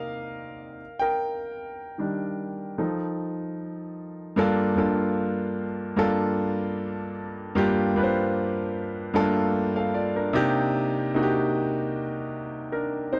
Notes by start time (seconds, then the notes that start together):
Already playing: C3 A#3 D#4 G4 A#4 D#5 F5
0.99 A#4 G5
1.98 D#3 G3 D4
2.78 F3 D#4 A4
4.36 G2 A#3 D4 F4 A4
4.76 G2 A#3 D4 F4 A4
5.96 G2 A#3 D4 F4 A4
7.55 G2 A#3 D4 F4 G4
7.95 G2 A#3 D4 F4 B4
8.03 C5
9.14 G2 A3 D4 F4 A4
9.20 A#3
9.76 A4 F5
9.94 F4 D5
10.16 D4 A#4
10.33 C3 A#3 D4 D#4 G4
11.14 C3 A#3 D4 D#4 F#4
11.23 G4
12.72 D4 A#4
13.13 D#4 C5